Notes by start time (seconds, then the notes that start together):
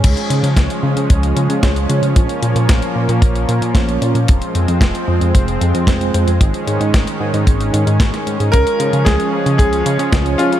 0.04 C#2 F3 G#3 C#4, kick, closed hi-hat, crash
0.17 closed hi-hat
0.30 C#3, closed hi-hat
0.43 C#3, closed hi-hat
0.56 C#2, kick, snare, closed hi-hat
0.70 closed hi-hat
0.83 C#3
0.96 C#3, closed hi-hat
1.10 C#2, kick, closed hi-hat
1.23 closed hi-hat
1.36 C#3, closed hi-hat
1.50 C#3, closed hi-hat
1.63 C#2 G#3 C#4 F4 C#5, kick, snare, closed hi-hat
1.76 closed hi-hat
1.89 C#3 G#3 C#4 F4 C#5, closed hi-hat
2.03 C#3, closed hi-hat
2.16 A#1 A#3, kick, closed hi-hat
2.29 closed hi-hat
2.42 A#2, closed hi-hat
2.56 A#2, closed hi-hat
2.69 A#1, kick, snare, closed hi-hat
2.82 closed hi-hat
2.96 A#2
3.09 A#2, closed hi-hat
3.22 A#1, kick, closed hi-hat
3.35 closed hi-hat
3.48 A#2, closed hi-hat
3.62 A#2, closed hi-hat
3.75 A#1 A#3 C#4 F4 C#5, kick, snare, closed hi-hat
3.89 closed hi-hat
4.02 A#2 A#3 C#4 F4 C#5, closed hi-hat
4.15 A#2, closed hi-hat
4.28 F1 G#3 C4, kick, closed hi-hat
4.42 closed hi-hat
4.55 F2, closed hi-hat
4.68 F2, closed hi-hat
4.81 F1, kick, snare, closed hi-hat
4.95 closed hi-hat
5.08 F2
5.21 F2, closed hi-hat
5.35 F1, kick, closed hi-hat
5.48 closed hi-hat
5.61 F2, closed hi-hat
5.74 F2, closed hi-hat
5.87 F1 G#3 C4 F4 C5, kick, snare, closed hi-hat
6.01 closed hi-hat
6.14 F2 G#3 C4 F4 C5, closed hi-hat
6.27 F2, closed hi-hat
6.41 G#1 D#3 C#4, kick, closed hi-hat
6.54 closed hi-hat
6.67 G#2, closed hi-hat
6.80 G#2, closed hi-hat
6.94 G#1, kick, snare, closed hi-hat
7.07 closed hi-hat
7.20 G#2
7.34 G#2, closed hi-hat
7.47 G#1, kick, closed hi-hat
7.61 closed hi-hat
7.73 G#2, closed hi-hat
7.87 G#2, closed hi-hat
8.00 G#1, kick, snare, closed hi-hat
8.14 snare, closed hi-hat
8.27 G#2, closed hi-hat
8.40 G#2, closed hi-hat
8.52 C#2 F3 G#3 A#4, kick, closed hi-hat
8.67 closed hi-hat
8.80 C#3, closed hi-hat
8.93 C#3, closed hi-hat
9.05 C#2 G#4, kick, snare, closed hi-hat
9.20 closed hi-hat
9.33 C#3
9.46 C#3, closed hi-hat
9.58 C#2 G#4, kick, closed hi-hat
9.73 closed hi-hat
9.86 C#3, closed hi-hat
9.99 C#3, closed hi-hat
10.12 C#2 G#3 C#4 F4 C#5, kick, snare, closed hi-hat
10.26 closed hi-hat
10.38 C#3 G#3 C#4 F4 C#5, closed hi-hat
10.52 C#3, closed hi-hat